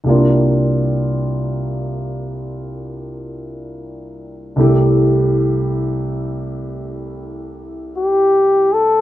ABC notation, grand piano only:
X:1
M:4/4
L:1/8
Q:"Swing" 1/4=53
K:Cmix
V:1 name="Grand piano"
[C,,C,B,DF]8 | [C,,C,A,EG]8 |]